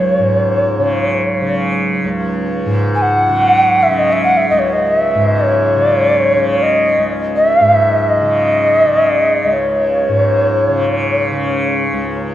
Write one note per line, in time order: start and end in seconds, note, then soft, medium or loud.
0.00 2.04 C#2 soft
0.00 0.18 G#2 soft
0.00 0.80 C#3 medium
0.00 3.60 F#3 soft
0.00 1.55 C#5 medium
0.19 2.65 G#2 soft
0.80 1.42 C#3 soft
1.42 3.29 C#3 soft
2.04 4.51 C#2 medium
2.66 5.15 G#2 medium
2.95 3.03 G#5 medium
3.02 3.85 F#5 medium
3.29 3.90 C#3 medium
3.83 4.00 E5 medium
3.90 5.77 C#3 soft
3.99 4.14 D#5 medium
4.12 4.24 E5 medium
4.25 4.39 F#5 medium
4.37 4.48 E5 medium
4.50 6.97 C#2 medium
4.50 4.61 D#5 medium
4.59 4.74 C#5 medium
4.73 4.89 D#5 medium
4.87 5.45 E5 medium
5.15 7.60 G#2 soft
5.43 5.85 C#5 medium
5.77 6.36 C#3 soft
5.85 5.96 D5 medium
5.96 6.64 C#5 medium
6.36 8.22 C#3 soft
6.62 7.09 D#5 medium
6.98 9.44 C#2 soft
7.36 7.98 E5 medium
7.61 10.08 G#2 medium
7.98 8.10 E5 medium
8.09 9.54 D#5 medium
8.22 8.86 C#3 soft
8.86 10.69 C#3 soft
9.45 11.92 C#2 soft
9.52 11.61 C#5 medium
10.09 12.35 G#2 soft
10.69 11.32 C#3 medium
11.32 12.35 C#3 soft
11.93 12.35 C#2 soft